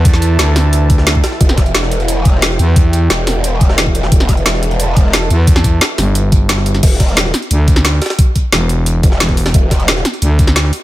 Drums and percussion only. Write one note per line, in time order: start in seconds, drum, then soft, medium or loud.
0.05 kick loud
0.05 closed hi-hat medium
0.14 snare soft
0.22 closed hi-hat medium
0.39 snare loud
0.39 closed hi-hat medium
0.56 snare medium
0.56 closed hi-hat medium
0.56 open hi-hat medium
0.73 closed hi-hat medium
0.90 kick loud
0.90 closed hi-hat medium
0.98 snare medium
1.07 snare loud
1.07 closed hi-hat medium
1.15 kick medium
1.24 snare loud
1.24 closed hi-hat medium
1.32 snare soft
1.41 kick loud
1.41 closed hi-hat medium
1.49 snare medium
1.58 kick medium
1.58 snare medium
1.58 closed hi-hat medium
1.66 closed hi-hat soft
1.75 snare loud
1.75 closed hi-hat medium
1.83 snare medium
1.91 closed hi-hat medium
2.00 closed hi-hat soft
2.08 closed hi-hat medium
2.25 kick loud
2.25 closed hi-hat medium
2.42 snare loud
2.42 closed hi-hat medium
2.51 snare soft
2.59 closed hi-hat medium
2.76 kick loud
2.76 closed hi-hat medium
2.93 closed hi-hat medium
3.10 snare loud
3.10 closed hi-hat medium
3.27 snare medium
3.27 closed hi-hat medium
3.27 open hi-hat medium
3.44 closed hi-hat medium
3.61 kick loud
3.61 closed hi-hat medium
3.70 snare medium
3.78 snare loud
3.78 closed hi-hat medium
3.86 kick medium
3.95 closed hi-hat medium
4.03 snare medium
4.12 kick loud
4.12 closed hi-hat medium
4.20 snare medium
4.29 kick medium
4.29 snare medium
4.29 closed hi-hat medium
4.37 closed hi-hat soft
4.46 snare loud
4.46 closed hi-hat medium
4.54 snare medium
4.63 closed hi-hat medium
4.71 closed hi-hat soft
4.80 closed hi-hat loud
4.80 closed hi-hat medium
4.97 kick loud
4.97 closed hi-hat medium
5.13 snare loud
5.13 closed hi-hat loud
5.13 closed hi-hat medium
5.22 snare soft
5.30 closed hi-hat medium
5.47 kick loud
5.47 closed hi-hat loud
5.47 closed hi-hat medium
5.56 snare soft
5.56 snare medium
5.64 kick medium
5.64 closed hi-hat medium
5.81 snare loud
5.81 closed hi-hat loud
5.81 closed hi-hat medium
5.98 snare medium
5.98 closed hi-hat medium
5.98 open hi-hat medium
6.15 closed hi-hat loud
6.15 closed hi-hat medium
6.32 kick loud
6.32 closed hi-hat medium
6.49 snare loud
6.49 closed hi-hat loud
6.49 closed hi-hat medium
6.58 snare soft
6.66 closed hi-hat medium
6.75 snare soft
6.75 closed hi-hat soft
6.83 kick loud
6.83 closed hi-hat loud
6.83 closed hi-hat medium
6.83 crash loud
7.00 kick medium
7.00 snare medium
7.00 closed hi-hat medium
7.08 closed hi-hat soft
7.17 snare loud
7.17 closed hi-hat medium
7.25 snare medium
7.34 snare medium
7.34 closed hi-hat medium
7.42 closed hi-hat soft
7.51 closed hi-hat loud
7.51 closed hi-hat medium
7.68 kick loud
7.68 closed hi-hat medium
7.76 snare medium
7.85 snare loud
7.85 closed hi-hat loud
7.85 closed hi-hat medium
7.93 snare soft
8.02 snare medium
8.02 closed hi-hat medium
8.02 open hi-hat medium
8.06 snare medium
8.06 closed hi-hat medium
8.10 snare loud
8.10 closed hi-hat medium
8.19 kick loud
8.19 closed hi-hat loud
8.19 closed hi-hat medium
8.36 kick medium
8.36 closed hi-hat medium
8.52 snare loud
8.52 closed hi-hat medium
8.69 closed hi-hat medium
8.86 closed hi-hat medium
9.03 kick loud
9.03 closed hi-hat medium
9.12 snare soft
9.20 snare loud
9.20 closed hi-hat medium
9.29 kick medium
9.29 snare soft
9.37 closed hi-hat medium
9.37 open hi-hat medium
9.46 snare loud
9.46 snare soft
9.46 closed hi-hat medium
9.54 kick loud
9.54 closed hi-hat medium
9.71 kick medium
9.71 snare medium
9.71 closed hi-hat medium
9.80 closed hi-hat soft
9.88 snare loud
9.88 closed hi-hat medium
9.97 snare medium
10.05 snare medium
10.05 closed hi-hat medium
10.14 closed hi-hat soft
10.22 closed hi-hat medium
10.39 kick loud
10.39 closed hi-hat medium
10.47 snare medium
10.56 snare loud
10.56 closed hi-hat loud
10.56 closed hi-hat medium
10.64 snare soft
10.73 closed hi-hat medium
10.73 open hi-hat medium